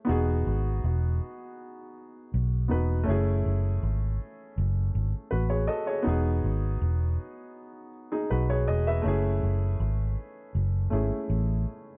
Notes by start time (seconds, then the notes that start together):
0.05 B3 D#4
0.09 E1 F#4 G#4
0.47 G#1
0.84 E1
2.34 B1
2.68 E1 B3 D#4 F#4 B4
3.03 A3 C#4
3.08 F#1 E4 G#4
3.46 F#1
3.83 G#1
4.58 F#1
4.95 G#1
5.31 A1 F#4 B4
5.50 G#4 C#5
5.67 A4 D#5
5.87 G#4 C#5
6.02 B3 D#4
6.06 E1 F#4 G#4
6.44 G#1
6.82 E1
8.12 D#4 G#4
8.30 B1 F#4 B4
8.50 G#4 C#5
8.68 E1 G#4 D#5
8.87 B4 E5
9.02 F#1 A3 C#4
9.06 E4 G#4
9.43 F#1
9.80 G#1
10.55 F#1
10.90 G#1 A3 C#4 E4 G#4
11.30 A1